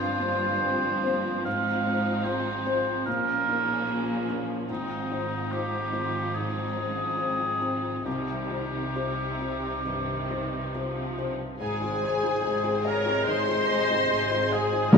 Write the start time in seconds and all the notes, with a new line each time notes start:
Already playing: G1 G2 F3 C4 F4 C5
0.18 A#3 C4 C5
0.59 C4 F4 C5
1.01 A#3 C4 C5
1.44 G#1 G#2 G#3 D#4 F5
1.86 C4 C5
2.24 C4 F4 C5
2.66 C4 C5
3.05 A#1 A#2 F3 A#3 C#4 A#4
3.48 C#4 D#4 A#4
3.89 C#4 F4 A#4
4.29 C#4 A#4
4.69 G#1 G#2 F3 C4 D#4
5.11 D#4 C5
5.52 D#4 F4 G4 C5
5.93 D#4 F4 C5
6.34 G#2 D#4 G#4
6.77 C#4 D#4 C5
7.18 C4 F4 C5
7.61 D#4 C5
8.05 C2 C3 D#3 G3 C4 D#4 G4
8.50 D#4 C5
8.95 C3 G4 C5
9.41 D#4 C5
9.85 G2 D#3
10.30 D#4 C5
10.73 F3 G4 C5
11.18 D#4 C5
11.59 G#1 G#2 C3 D#4 G#4 C5 G#5
11.81 C4 D#4 C5
12.03 D#4 G#4 C5
12.23 C4 D#4 C5
12.43 G#1 G#2 D#4 G#4
12.64 C4 D#4 C5
12.84 D#4 G#4 A#4 C#5 D#5 A#5
13.06 C4 D#4 C5
13.26 G#1 G#2 D#3 D#4 G#4 C5 D#5 C6
13.48 C4 D#4 C5
13.69 D#4 G#4 C5
13.90 C4 D#4 C5
14.10 G#1 G#2 D#4 G#4
14.31 C4 D#4 C5
14.51 D#4 G#4 C5 D#5 G#5
14.72 C4 D#4 C5
14.91 D#2 D#3 A#3 G4 A#4 D#5 A#5